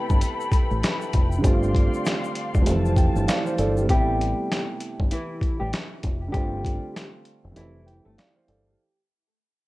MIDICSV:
0, 0, Header, 1, 6, 480
1, 0, Start_track
1, 0, Key_signature, 0, "minor"
1, 0, Tempo, 612245
1, 1131, Time_signature, 4, 2, 24, 8
1, 7588, End_track
2, 0, Start_track
2, 0, Title_t, "String section"
2, 0, Program_c, 0, 48
2, 0, Note_on_c, 0, 69, 91
2, 0, Note_on_c, 0, 71, 85
2, 0, Note_on_c, 0, 79, 79
2, 0, Note_on_c, 0, 83, 95
2, 1111, Note_off_c, 0, 83, 0
2, 1112, Note_off_c, 0, 69, 0
2, 1112, Note_off_c, 0, 71, 0
2, 1138, Note_on_c, 0, 74, 79
2, 1139, Note_on_c, 0, 77, 83
2, 1139, Note_on_c, 0, 84, 88
2, 2085, Note_off_c, 0, 74, 0
2, 2085, Note_off_c, 0, 84, 0
2, 2092, Note_on_c, 0, 72, 74
2, 2093, Note_on_c, 0, 81, 89
2, 3018, Note_off_c, 0, 79, 0
2, 3035, Note_off_c, 0, 77, 0
2, 3042, Note_off_c, 0, 72, 0
2, 3042, Note_off_c, 0, 81, 0
2, 7588, End_track
3, 0, Start_track
3, 0, Title_t, "Nylon-string guitar"
3, 0, Program_c, 1, 24
3, 3056, Note_on_c, 1, 67, 111
3, 3063, Note_on_c, 1, 55, 92
3, 3649, Note_off_c, 1, 67, 0
3, 3653, Note_off_c, 1, 55, 0
3, 4012, Note_on_c, 1, 64, 83
3, 4017, Note_on_c, 1, 52, 65
3, 4375, Note_off_c, 1, 64, 0
3, 4378, Note_off_c, 1, 52, 0
3, 4388, Note_on_c, 1, 67, 75
3, 4395, Note_on_c, 1, 55, 60
3, 4476, Note_off_c, 1, 67, 0
3, 4480, Note_off_c, 1, 55, 0
3, 4956, Note_on_c, 1, 67, 109
3, 4962, Note_on_c, 1, 55, 78
3, 5559, Note_off_c, 1, 67, 0
3, 5562, Note_off_c, 1, 55, 0
3, 5927, Note_on_c, 1, 64, 84
3, 5933, Note_on_c, 1, 52, 58
3, 6293, Note_off_c, 1, 64, 0
3, 6296, Note_off_c, 1, 52, 0
3, 6312, Note_on_c, 1, 69, 75
3, 6318, Note_on_c, 1, 57, 59
3, 6398, Note_off_c, 1, 69, 0
3, 6401, Note_off_c, 1, 57, 0
3, 7588, End_track
4, 0, Start_track
4, 0, Title_t, "Grand piano"
4, 0, Program_c, 2, 0
4, 0, Control_c, 2, 64, 127
4, 0, Note_on_c, 2, 48, 78
4, 0, Note_on_c, 2, 55, 76
4, 0, Note_on_c, 2, 57, 76
4, 0, Note_on_c, 2, 59, 71
4, 0, Note_on_c, 2, 64, 89
4, 1075, Note_off_c, 2, 48, 0
4, 1084, Note_off_c, 2, 55, 0
4, 1086, Note_on_c, 2, 50, 77
4, 1093, Note_off_c, 2, 57, 0
4, 1101, Note_off_c, 2, 59, 0
4, 1104, Note_on_c, 2, 55, 72
4, 1110, Note_off_c, 2, 64, 0
4, 1120, Note_on_c, 2, 57, 70
4, 1138, Note_on_c, 2, 60, 70
4, 1140, Control_c, 2, 64, 0
4, 1155, Note_on_c, 2, 65, 84
4, 1298, Control_c, 2, 64, 127
4, 2049, Note_off_c, 2, 50, 0
4, 2053, Note_on_c, 2, 53, 78
4, 2058, Note_off_c, 2, 55, 0
4, 2066, Note_off_c, 2, 57, 0
4, 2071, Note_on_c, 2, 55, 75
4, 2075, Note_off_c, 2, 60, 0
4, 2084, Note_off_c, 2, 65, 0
4, 2087, Note_on_c, 2, 57, 72
4, 2099, Control_c, 2, 64, 0
4, 2105, Note_on_c, 2, 60, 62
4, 2122, Note_on_c, 2, 52, 87
4, 2252, Control_c, 2, 64, 127
4, 2321, Note_on_c, 2, 79, 74
4, 2549, Note_off_c, 2, 79, 0
4, 2569, Note_on_c, 2, 77, 82
4, 2570, Note_on_c, 2, 74, 72
4, 2710, Note_off_c, 2, 74, 0
4, 2713, Note_on_c, 2, 72, 75
4, 2793, Note_off_c, 2, 77, 0
4, 2803, Note_off_c, 2, 72, 0
4, 2809, Note_on_c, 2, 69, 81
4, 2809, Note_on_c, 2, 74, 71
4, 2950, Note_off_c, 2, 69, 0
4, 2961, Note_on_c, 2, 67, 69
4, 3003, Note_on_c, 2, 48, 71
4, 3009, Note_off_c, 2, 55, 0
4, 3012, Note_off_c, 2, 53, 0
4, 3021, Note_on_c, 2, 55, 75
4, 3026, Note_off_c, 2, 57, 0
4, 3033, Note_off_c, 2, 74, 0
4, 3038, Note_on_c, 2, 57, 73
4, 3039, Note_off_c, 2, 60, 0
4, 3047, Note_off_c, 2, 52, 0
4, 3055, Note_on_c, 2, 59, 68
4, 3061, Control_c, 2, 64, 0
4, 3072, Note_on_c, 2, 64, 84
4, 3188, Note_off_c, 2, 67, 0
4, 3196, Control_c, 2, 64, 127
4, 4915, Note_off_c, 2, 48, 0
4, 4924, Note_off_c, 2, 55, 0
4, 4925, Note_on_c, 2, 50, 71
4, 4933, Note_off_c, 2, 57, 0
4, 4941, Note_off_c, 2, 59, 0
4, 4942, Note_on_c, 2, 55, 67
4, 4950, Note_off_c, 2, 64, 0
4, 4959, Note_on_c, 2, 57, 70
4, 4977, Note_on_c, 2, 60, 66
4, 4982, Control_c, 2, 64, 0
4, 4994, Note_on_c, 2, 65, 80
4, 5124, Control_c, 2, 64, 127
4, 5888, Note_off_c, 2, 50, 0
4, 5895, Note_on_c, 2, 52, 73
4, 5897, Note_off_c, 2, 55, 0
4, 5905, Note_off_c, 2, 57, 0
4, 5912, Note_on_c, 2, 55, 68
4, 5914, Note_off_c, 2, 60, 0
4, 5923, Note_off_c, 2, 65, 0
4, 5929, Note_on_c, 2, 57, 67
4, 5939, Control_c, 2, 64, 0
4, 5947, Note_on_c, 2, 60, 63
4, 5963, Note_on_c, 2, 76, 83
4, 6079, Control_c, 2, 64, 127
4, 6163, Note_on_c, 2, 79, 70
4, 6390, Note_off_c, 2, 79, 0
4, 6410, Note_on_c, 2, 74, 70
4, 6410, Note_on_c, 2, 77, 77
4, 6550, Note_off_c, 2, 74, 0
4, 6552, Note_on_c, 2, 72, 72
4, 6633, Note_off_c, 2, 77, 0
4, 6643, Note_off_c, 2, 72, 0
4, 6649, Note_on_c, 2, 69, 73
4, 6649, Note_on_c, 2, 74, 69
4, 6790, Note_off_c, 2, 69, 0
4, 6803, Note_on_c, 2, 67, 65
4, 6853, Note_off_c, 2, 52, 0
4, 6862, Note_off_c, 2, 55, 0
4, 6871, Note_off_c, 2, 57, 0
4, 6873, Note_off_c, 2, 74, 0
4, 6880, Note_off_c, 2, 60, 0
4, 6888, Note_off_c, 2, 76, 0
4, 6902, Control_c, 2, 64, 0
4, 7028, Note_off_c, 2, 67, 0
4, 7588, End_track
5, 0, Start_track
5, 0, Title_t, "Fingered electric bass"
5, 0, Program_c, 3, 33
5, 78, Note_on_c, 3, 31, 100
5, 158, Note_off_c, 3, 31, 0
5, 557, Note_on_c, 3, 33, 98
5, 637, Note_off_c, 3, 33, 0
5, 893, Note_on_c, 3, 29, 98
5, 1099, Note_off_c, 3, 29, 0
5, 1130, Note_on_c, 3, 31, 99
5, 1465, Note_off_c, 3, 31, 0
5, 1998, Note_on_c, 3, 28, 94
5, 2078, Note_off_c, 3, 28, 0
5, 2088, Note_on_c, 3, 29, 103
5, 2424, Note_off_c, 3, 29, 0
5, 2477, Note_on_c, 3, 31, 99
5, 2557, Note_off_c, 3, 31, 0
5, 2810, Note_on_c, 3, 31, 101
5, 3017, Note_off_c, 3, 31, 0
5, 3050, Note_on_c, 3, 33, 104
5, 3385, Note_off_c, 3, 33, 0
5, 3918, Note_on_c, 3, 31, 93
5, 3998, Note_off_c, 3, 31, 0
5, 4398, Note_on_c, 3, 33, 91
5, 4478, Note_off_c, 3, 33, 0
5, 4734, Note_on_c, 3, 29, 92
5, 4940, Note_off_c, 3, 29, 0
5, 4971, Note_on_c, 3, 31, 97
5, 5305, Note_off_c, 3, 31, 0
5, 5837, Note_on_c, 3, 29, 87
5, 5917, Note_off_c, 3, 29, 0
5, 5930, Note_on_c, 3, 29, 109
5, 6265, Note_off_c, 3, 29, 0
5, 6317, Note_on_c, 3, 31, 92
5, 6398, Note_off_c, 3, 31, 0
5, 6652, Note_on_c, 3, 31, 96
5, 6858, Note_off_c, 3, 31, 0
5, 7588, End_track
6, 0, Start_track
6, 0, Title_t, "Drums"
6, 75, Note_on_c, 9, 82, 50
6, 77, Note_on_c, 9, 36, 98
6, 153, Note_off_c, 9, 82, 0
6, 156, Note_off_c, 9, 36, 0
6, 166, Note_on_c, 9, 42, 108
6, 173, Note_on_c, 9, 82, 65
6, 245, Note_off_c, 9, 42, 0
6, 252, Note_off_c, 9, 82, 0
6, 317, Note_on_c, 9, 82, 56
6, 395, Note_off_c, 9, 82, 0
6, 404, Note_on_c, 9, 36, 98
6, 407, Note_on_c, 9, 82, 60
6, 416, Note_on_c, 9, 42, 69
6, 483, Note_off_c, 9, 36, 0
6, 485, Note_off_c, 9, 82, 0
6, 494, Note_off_c, 9, 42, 0
6, 556, Note_on_c, 9, 82, 53
6, 634, Note_off_c, 9, 82, 0
6, 654, Note_on_c, 9, 42, 97
6, 654, Note_on_c, 9, 82, 77
6, 659, Note_on_c, 9, 38, 121
6, 732, Note_off_c, 9, 42, 0
6, 732, Note_off_c, 9, 82, 0
6, 738, Note_off_c, 9, 38, 0
6, 795, Note_on_c, 9, 82, 54
6, 874, Note_off_c, 9, 82, 0
6, 886, Note_on_c, 9, 82, 56
6, 889, Note_on_c, 9, 42, 81
6, 893, Note_on_c, 9, 36, 97
6, 965, Note_off_c, 9, 82, 0
6, 968, Note_off_c, 9, 42, 0
6, 972, Note_off_c, 9, 36, 0
6, 1034, Note_on_c, 9, 82, 55
6, 1112, Note_off_c, 9, 82, 0
6, 1130, Note_on_c, 9, 36, 115
6, 1131, Note_on_c, 9, 42, 89
6, 1131, Note_on_c, 9, 82, 71
6, 1208, Note_off_c, 9, 36, 0
6, 1210, Note_off_c, 9, 42, 0
6, 1210, Note_off_c, 9, 82, 0
6, 1279, Note_on_c, 9, 82, 53
6, 1357, Note_off_c, 9, 82, 0
6, 1370, Note_on_c, 9, 36, 97
6, 1380, Note_on_c, 9, 42, 78
6, 1449, Note_off_c, 9, 36, 0
6, 1459, Note_off_c, 9, 42, 0
6, 1519, Note_on_c, 9, 82, 52
6, 1598, Note_off_c, 9, 82, 0
6, 1609, Note_on_c, 9, 82, 76
6, 1620, Note_on_c, 9, 38, 124
6, 1626, Note_on_c, 9, 42, 90
6, 1688, Note_off_c, 9, 82, 0
6, 1698, Note_off_c, 9, 38, 0
6, 1704, Note_off_c, 9, 42, 0
6, 1757, Note_on_c, 9, 82, 54
6, 1836, Note_off_c, 9, 82, 0
6, 1845, Note_on_c, 9, 42, 77
6, 1924, Note_off_c, 9, 42, 0
6, 1994, Note_on_c, 9, 82, 53
6, 1997, Note_on_c, 9, 36, 98
6, 2072, Note_off_c, 9, 82, 0
6, 2075, Note_off_c, 9, 36, 0
6, 2087, Note_on_c, 9, 42, 107
6, 2094, Note_on_c, 9, 82, 66
6, 2165, Note_off_c, 9, 42, 0
6, 2173, Note_off_c, 9, 82, 0
6, 2237, Note_on_c, 9, 82, 57
6, 2316, Note_off_c, 9, 82, 0
6, 2324, Note_on_c, 9, 36, 98
6, 2326, Note_on_c, 9, 82, 60
6, 2335, Note_on_c, 9, 42, 68
6, 2403, Note_off_c, 9, 36, 0
6, 2405, Note_off_c, 9, 82, 0
6, 2414, Note_off_c, 9, 42, 0
6, 2476, Note_on_c, 9, 82, 53
6, 2555, Note_off_c, 9, 82, 0
6, 2574, Note_on_c, 9, 42, 100
6, 2574, Note_on_c, 9, 82, 74
6, 2579, Note_on_c, 9, 38, 126
6, 2652, Note_off_c, 9, 42, 0
6, 2652, Note_off_c, 9, 82, 0
6, 2658, Note_off_c, 9, 38, 0
6, 2715, Note_on_c, 9, 82, 52
6, 2794, Note_off_c, 9, 82, 0
6, 2808, Note_on_c, 9, 82, 55
6, 2809, Note_on_c, 9, 42, 82
6, 2886, Note_off_c, 9, 82, 0
6, 2888, Note_off_c, 9, 42, 0
6, 2955, Note_on_c, 9, 82, 54
6, 3034, Note_off_c, 9, 82, 0
6, 3050, Note_on_c, 9, 36, 115
6, 3051, Note_on_c, 9, 42, 87
6, 3128, Note_off_c, 9, 36, 0
6, 3129, Note_off_c, 9, 42, 0
6, 3301, Note_on_c, 9, 42, 73
6, 3380, Note_off_c, 9, 42, 0
6, 3540, Note_on_c, 9, 38, 121
6, 3546, Note_on_c, 9, 42, 86
6, 3618, Note_off_c, 9, 38, 0
6, 3625, Note_off_c, 9, 42, 0
6, 3766, Note_on_c, 9, 42, 77
6, 3845, Note_off_c, 9, 42, 0
6, 3918, Note_on_c, 9, 36, 96
6, 3996, Note_off_c, 9, 36, 0
6, 4007, Note_on_c, 9, 42, 103
6, 4086, Note_off_c, 9, 42, 0
6, 4245, Note_on_c, 9, 36, 94
6, 4256, Note_on_c, 9, 42, 66
6, 4323, Note_off_c, 9, 36, 0
6, 4334, Note_off_c, 9, 42, 0
6, 4493, Note_on_c, 9, 42, 92
6, 4498, Note_on_c, 9, 38, 116
6, 4572, Note_off_c, 9, 42, 0
6, 4577, Note_off_c, 9, 38, 0
6, 4729, Note_on_c, 9, 42, 79
6, 4734, Note_on_c, 9, 36, 90
6, 4807, Note_off_c, 9, 42, 0
6, 4812, Note_off_c, 9, 36, 0
6, 4970, Note_on_c, 9, 36, 112
6, 4972, Note_on_c, 9, 42, 83
6, 5049, Note_off_c, 9, 36, 0
6, 5050, Note_off_c, 9, 42, 0
6, 5211, Note_on_c, 9, 36, 92
6, 5221, Note_on_c, 9, 42, 75
6, 5290, Note_off_c, 9, 36, 0
6, 5300, Note_off_c, 9, 42, 0
6, 5460, Note_on_c, 9, 38, 117
6, 5466, Note_on_c, 9, 42, 86
6, 5538, Note_off_c, 9, 38, 0
6, 5545, Note_off_c, 9, 42, 0
6, 5686, Note_on_c, 9, 42, 75
6, 5764, Note_off_c, 9, 42, 0
6, 5928, Note_on_c, 9, 42, 100
6, 6007, Note_off_c, 9, 42, 0
6, 6177, Note_on_c, 9, 42, 65
6, 6255, Note_off_c, 9, 42, 0
6, 6416, Note_on_c, 9, 42, 88
6, 6421, Note_on_c, 9, 38, 115
6, 6494, Note_off_c, 9, 42, 0
6, 6500, Note_off_c, 9, 38, 0
6, 6651, Note_on_c, 9, 42, 75
6, 6729, Note_off_c, 9, 42, 0
6, 7588, End_track
0, 0, End_of_file